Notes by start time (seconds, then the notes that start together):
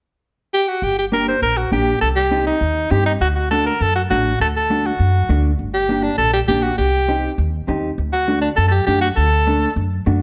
0.54 G4
0.68 F#4
0.82 G1 G4
0.99 G4
1.12 A#3 D4 G4 A#4
1.28 C5
1.42 A#1 A#4
1.57 F#4
1.72 A#1 A#3 D4 G4
2.01 C2 A4
2.16 G4
2.31 C4 D#4 G4
2.47 D#4
2.61 D#2
2.91 G2 C4 D#4 G4
3.06 D#4
3.21 D2 F#4
3.35 F#4
3.51 A3 D4 F#4 A4
3.66 A#4
3.81 F#2 A4
3.96 F#4
4.10 A1 A3 D4 F#4
4.40 D2 A4
4.56 A4
4.70 A3 D4 F#4
4.86 F#4
4.99 F#2
5.29 D2 A3 D4 F#4
5.59 G1
5.74 G4
5.89 A#3 D4 G4
6.03 D4
6.18 A#1 A4
6.33 G4
6.48 A#1 A#3 D4 G4
6.62 F#4
6.78 C2 G4
7.08 C4 D#4 G4
7.38 D#2
7.68 D#2 C4 D#4 G4
7.98 D2
8.13 F#4
8.28 A3 D4 F#4
8.41 D4
8.56 F#2 A4
8.68 G4 A4
8.86 F#2 A3 D4 F#4 G4
9.01 F#4
9.16 D2 A4
9.47 A3 D4 A4
9.76 F#2
10.06 F#2 A3 D4 F#4